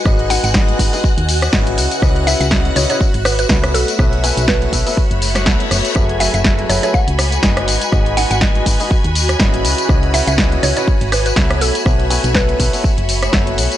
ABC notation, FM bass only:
X:1
M:4/4
L:1/16
Q:"Swing 16ths" 1/4=122
K:Bmix
V:1 name="FM bass" clef=bass
G,,,3 G,,,3 G,,, z2 D,,3 G,,,2 C,, z | C,,3 C,,3 C,, z2 G,,,3 C,,2 B,,, z | B,,,3 B,,,3 B,,, z2 F,,,3 B,,, z F,,, z | F,,,3 F,,,3 F,,, z2 C,,3 F,,,2 G,,, z |
G,,,3 G,,,3 G,,, z2 D,,3 G,,,2 C,, z | C,,3 C,,3 C,, z2 G,,,3 C,,2 B,,, z | B,,,3 B,,,3 B,,, z2 F,,,3 F,,,2 B,,, z |]